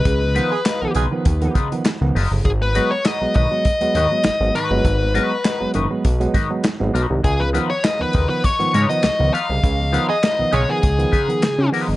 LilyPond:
<<
  \new Staff \with { instrumentName = "Lead electric guitar" } { \time 4/4 \key cis \mixolydian \tempo 4 = 100 b'4. r2 r8 | gis'16 b'8 cis''16 dis''8 dis''2 b'8~ | b'4. r2 r8 | gis'16 b'8 cis''16 dis''16 b'8 b'16 cis''8. dis''8. eis''8~ |
eis''8. dis''8. cis''16 gis'4.~ gis'16 r8 | }
  \new Staff \with { instrumentName = "Tenor saxophone" } { \time 4/4 \key cis \mixolydian r8. gis'16 r8 gis'16 r2 r16 | r1 | r1 | r1 |
r8. gis'16 r8 gis'16 r2 r16 | }
  \new Staff \with { instrumentName = "Clean electric guitar" } { \time 4/4 \key cis \mixolydian r8 <dis' eis' b'>16 r16 <dis' eis' b'>16 r16 <dis' eis' b'>8 r8 <dis' eis' b'>16 r8. <dis' eis' b'>16 r16 | r8 <dis' fis' b'>16 r16 <dis' fis' b'>16 r16 <dis' fis' b'>8 r8 <dis' fis' b'>16 r8. <dis' fis' b'>8 | r8 <dis' fis' b'>8 <dis' fis' b'>16 r16 <dis' fis' b'>8 r8 <dis' fis' b'>16 r8. <dis' fis' b'>8 | r8 <dis' eis' b'>16 r16 <dis' eis' b'>16 r16 <dis' eis' b'>8 r8 <dis' eis' b'>8 r8 <dis' eis' b'>16 r16 |
r8 <dis' eis' b'>16 r16 <dis' eis' b'>8 <dis' eis' b'>8 r8 <dis' eis' b'>16 r8. <dis' eis' b'>8 | }
  \new Staff \with { instrumentName = "Tine electric piano" } { \clef bass \time 4/4 \key cis \mixolydian cis16 <eis b>16 <dis eis b>16 r8 <dis eis b>16 cis16 <dis eis b>16 r16 <dis eis b>16 cis16 <dis eis b>16 r16 <dis eis b>16 r16 cis16 | <gis, dis>16 <gis b>16 <fis gis b>16 r8 <fis gis b>16 <gis, dis>16 <fis gis b>16 r16 <fis gis b>16 <gis, dis>16 <fis gis b>16 r16 <fis gis b>16 <gis, dis>16 <fis gis b>16 | <gis, dis>16 <gis b>16 <fis gis b>16 r8 <fis gis b>16 <gis, dis>16 <fis gis b>16 r16 <fis gis b>16 <gis, dis>16 <fis gis b>16 r16 <fis gis b>16 r16 <gis, dis>16 | cis16 <eis b>16 <dis eis b>16 r8 <dis eis b>16 cis16 <dis eis b>16 r16 <dis eis b>16 cis16 <dis eis b>16 r16 <dis eis b>16 r16 cis16 |
cis16 <eis b>16 <dis eis b>16 r8 <dis eis b>16 cis16 <dis eis b>16 r16 <dis eis b>16 cis16 <dis eis b>16 cis16 r16 <dis eis b>16 <eis b>16 | }
  \new Staff \with { instrumentName = "Analog synth bass" } { \clef bass \time 4/4 \key cis \mixolydian cis,8. r8 b,,16 b,,16 r16 dis,8 r8. cis,16 fis,,16 g,,16 | gis,,8. r8 b,,16 b,,16 r8 dis,16 dis,16 r16 gis,,16 gis,,16 r16 g,,16 | gis,,8. r8 fis,,16 fis,,16 r16 b,,8 r8. gis,,16 b,,16 bis,,16 | cis,8. r8 dis,16 dis,16 r8 gis,16 gis,16 r16 cis,16 cis,16 r16 bis,,16 |
cis,8. r8 b,,16 b,,16 r16 cis,8 r8. cis16 r16 g,,16 | }
  \new DrumStaff \with { instrumentName = "Drums" } \drummode { \time 4/4 <hh bd>8 hh8 <hc hh sn>8 hh8 <hh bd>16 hh16 <hh bd>16 hh16 <hc hh sn>8 hho8 | <hh bd>8 hh8 <hc hh sn>8 <hh bd>8 <hh bd>16 hh16 hh8 <hc hh sn>8 hh8 | <hh bd>8 hh8 <hc hh sn>8 hh8 <hh bd>16 hh16 <hh bd>8 <hc hh sn>8 hh8 | <hh bd>8 hh8 <hc hh sn>8 <hh bd>8 <hh bd>16 hh16 hh16 hh16 <hc hh sn>8 hh8 |
<hh bd>8 hh8 <hc hh sn>8 hh8 <hh bd>16 hh16 <hh bd>16 hh16 <hc hh sn>8 hho8 | }
>>